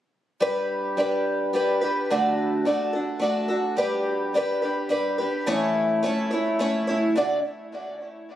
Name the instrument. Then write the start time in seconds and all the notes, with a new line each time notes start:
twelve-string acoustic guitar
0.40 G3 D4 G4 B4
0.97 G3 D4 G4 B4
1.53 G3 D4 G4 B4
1.81 D4 G4 B4
2.10 D3 A3 D4 F#4 A4
2.65 A3 D4 F#4 A4
2.93 D4 F#4 A4
3.19 A3 D4 F#4 A4
3.48 D4 F#4 A4
3.77 G3 D4 G4 B4
4.34 G3 D4 G4 B4
4.62 D4 G4 B4
4.89 G3 D4 G4 B4
5.18 D4 G4 B4
5.46 A2 E3 A3 C#4 E4 C#5
6.03 A3 C#4 E4 C#5
6.31 A3 C#4 E4 C#5
6.59 A3 C#4 E4 C#5
6.87 A3 C#4 E4 C#5
7.16 D3 A3 D4 F#4 D5